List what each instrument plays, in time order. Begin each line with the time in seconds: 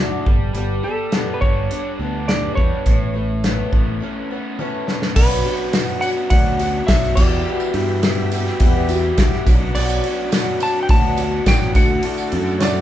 Already playing: fingered electric bass D2, twelve-string acoustic guitar D3 E3, overdriven electric guitar A3 D4 F#4, electric slide guitar F#5
0.00 twelve-string acoustic guitar A3 D4 F#4
0.26 fingered electric bass G1, overdriven electric guitar G3, twelve-string acoustic guitar B3 D4 A4, kick
0.55 fingered electric bass G1, overdriven electric guitar G3, twelve-string acoustic guitar G3 B3 D4 A4, closed hi-hat
0.84 overdriven electric guitar G3, twelve-string acoustic guitar B3 D4 A4, electric slide guitar A4
1.12 twelve-string acoustic guitar G3 B3 D4 A4, overdriven electric guitar B3, snare, closed hi-hat
1.34 electric slide guitar B4
1.41 fingered electric bass G1, overdriven electric guitar G3, twelve-string acoustic guitar D4, electric slide guitar C#5, kick
1.46 twelve-string acoustic guitar B3
1.71 twelve-string acoustic guitar G3 B3 D4 A4, overdriven electric guitar D4, closed hi-hat
1.99 fingered electric bass D2, overdriven electric guitar B3, twelve-string acoustic guitar B3 D4 A4
2.28 twelve-string acoustic guitar G3 B3 D4 A4, overdriven electric guitar D4, electric slide guitar D5, snare, closed hi-hat
2.55 fingered electric bass E2, overdriven electric guitar G3, twelve-string acoustic guitar D4 A4, electric slide guitar C#5, kick
2.60 twelve-string acoustic guitar B3
2.86 fingered electric bass A1, overdriven electric guitar A2, twelve-string acoustic guitar A3 C#4 E4 B4, kick, closed hi-hat
3.14 overdriven electric guitar A3, twelve-string acoustic guitar C#4 E4 B4
3.44 twelve-string acoustic guitar A3 C#4 E4 B4, overdriven electric guitar B3, snare, closed hi-hat
3.72 fingered electric bass A1, overdriven electric guitar A3, twelve-string acoustic guitar C#4 E4 B4, kick
4.00 twelve-string acoustic guitar A3 C#4 E4 B4, overdriven electric guitar C#4
4.30 overdriven electric guitar B3, twelve-string acoustic guitar C#4 E4 B4
4.59 twelve-string acoustic guitar A3 C#4 E4 B4, overdriven electric guitar C#4, high tom
4.87 overdriven electric guitar A3, twelve-string acoustic guitar E4 B4, snare
4.91 twelve-string acoustic guitar C#4
5.02 snare
5.15 fingered electric bass B1, overdriven electric guitar B2 F#3 B3 D4 F#4, twelve-string acoustic guitar B2 F#3 C#4 D4 F#4, tonewheel organ D4 F#4 B4 C#5, electric slide guitar B4, kick, crash
5.30 tambourine
5.44 overdriven electric guitar F#3 B3 D4 F#4, twelve-string acoustic guitar C#4 F#4, open hi-hat
5.48 twelve-string acoustic guitar D4
5.73 overdriven electric guitar B2 F#3 B3 D4 F#4, twelve-string acoustic guitar F#3 C#4 D4 F#4, snare, open hi-hat, tambourine
6.01 overdriven electric guitar F#3 B3 D4 F#4, twelve-string acoustic guitar C#4 D4 F#4, electric slide guitar F#5, open hi-hat, tambourine
6.16 overdriven electric guitar B3 D4 F#4, tambourine
6.30 fingered electric bass D2, twelve-string acoustic guitar B2 F#3 C#4 D4 F#4, electric slide guitar F#5, kick, open hi-hat
6.45 overdriven electric guitar B3 D4 F#4
6.59 overdriven electric guitar F#3 B3 D4 F#4, twelve-string acoustic guitar C#4 F#4, open hi-hat, tambourine
6.63 twelve-string acoustic guitar D4
6.74 overdriven electric guitar B3 D4 F#4
6.87 fingered electric bass B1, overdriven electric guitar B2 F#3 B3 D4, twelve-string acoustic guitar F#3 C#4 D4, electric slide guitar E5, kick, snare, open hi-hat, tambourine
6.91 overdriven electric guitar F#4, twelve-string acoustic guitar F#4
7.03 overdriven electric guitar B3 D4 F#4, snare
7.15 fingered electric bass E2, overdriven electric guitar E2 B2 E3 G3, tonewheel organ E4 G4 B4, twelve-string acoustic guitar E4 F#4, electric slide guitar D5, kick, tambourine, crash
7.19 twelve-string acoustic guitar B3, overdriven electric guitar E4 G4
7.31 overdriven electric guitar E3 G3 E4 G4
7.46 overdriven electric guitar E2 B2 E3 G3 E4 G4, twelve-string acoustic guitar E3 G3 B3 E4 F#4
7.60 tambourine
7.74 fingered electric bass G2, overdriven electric guitar E3 G3 E4 G4, twelve-string acoustic guitar B3 E4 F#4, open hi-hat
8.03 overdriven electric guitar E2 B2 E3 G3 E4 G4, twelve-string acoustic guitar G3 B3 E4, snare, open hi-hat, tambourine
8.07 twelve-string acoustic guitar F#4
8.32 overdriven electric guitar E3 G3 E4 G4, twelve-string acoustic guitar B3 E4 F#4, open hi-hat, tambourine
8.46 overdriven electric guitar E3 G3 E4 G4, snare, tambourine
8.60 fingered electric bass E2, twelve-string acoustic guitar E3 G3 B3 E4 F#4, kick, open hi-hat
8.75 overdriven electric guitar E3 G3 E4 G4
8.88 overdriven electric guitar E3 G3 E4 G4, twelve-string acoustic guitar E4 F#4, open hi-hat, tambourine
8.93 twelve-string acoustic guitar B3
9.02 overdriven electric guitar E3 G3 E4 G4, tambourine
9.17 fingered electric bass C#2, overdriven electric guitar E2 B2 E3 G3 E4 G4, twelve-string acoustic guitar G3 B3 E4, kick, snare, open hi-hat, tambourine
9.21 twelve-string acoustic guitar F#4
9.32 overdriven electric guitar E3 G3 E4 G4, snare
9.45 fingered electric bass B1, overdriven electric guitar B2 F#3 B3 D4 F#4, tonewheel organ D4 F#4 B4 D5, twelve-string acoustic guitar F#4, kick, open hi-hat, tambourine
9.49 twelve-string acoustic guitar C#4 D4
9.60 overdriven electric guitar B3 D4 F#4
9.74 fingered electric bass B1, overdriven electric guitar B2 F#3 B3 D4 F#4, twelve-string acoustic guitar B2 F#3 C#4 D4, electric slide guitar D5, crash
9.79 twelve-string acoustic guitar F#4
9.90 tambourine
10.03 overdriven electric guitar F#3 B3 D4 F#4, twelve-string acoustic guitar C#4 F#4, open hi-hat
10.08 twelve-string acoustic guitar D4
10.31 overdriven electric guitar B2 F#3 B3 D4 F#4, twelve-string acoustic guitar F#3 C#4 D4, snare, open hi-hat, tambourine
10.36 twelve-string acoustic guitar F#4
10.60 overdriven electric guitar F#3 B3 D4 F#4, twelve-string acoustic guitar C#4 F#4, electric slide guitar A5, open hi-hat, tambourine
10.65 twelve-string acoustic guitar D4
10.75 overdriven electric guitar B3 D4 F#4
10.83 electric slide guitar G5
10.89 fingered electric bass D2, twelve-string acoustic guitar B2 F#3 C#4 D4 F#4, electric slide guitar A5, kick, open hi-hat
11.02 overdriven electric guitar B3 D4 F#4
11.17 overdriven electric guitar F#3 B3 D4 F#4, twelve-string acoustic guitar C#4 D4 F#4, open hi-hat, tambourine
11.32 overdriven electric guitar B3 D4 F#4, tambourine
11.45 fingered electric bass A1, overdriven electric guitar B2 F#3 B3 D4 F#4, twelve-string acoustic guitar F#3 C#4 D4 F#4, electric slide guitar G5, kick, snare, open hi-hat, tambourine
11.60 overdriven electric guitar B3 D4 F#4, snare
11.73 fingered electric bass D2, overdriven electric guitar D3 A3 D4, twelve-string acoustic guitar A3 E4 F#4, tonewheel organ E4 F#4 A4 D5, electric slide guitar F#5, kick, open hi-hat, tambourine
11.77 overdriven electric guitar F#4
11.89 overdriven electric guitar A3 D4 F#4
12.02 twelve-string acoustic guitar D3 E3 A3 E4 F#4, overdriven electric guitar D3 A3 D4 F#4, open hi-hat
12.18 tambourine
12.31 fingered electric bass F#2, overdriven electric guitar D3 A3 D4 F#4, twelve-string acoustic guitar A3 E4 F#4, open hi-hat
12.46 tambourine
12.58 overdriven electric guitar D3 A3, twelve-string acoustic guitar E3 A3, upright piano C#5, snare, open hi-hat, tambourine
12.62 overdriven electric guitar D4 F#4, twelve-string acoustic guitar E4 F#4, upright piano D5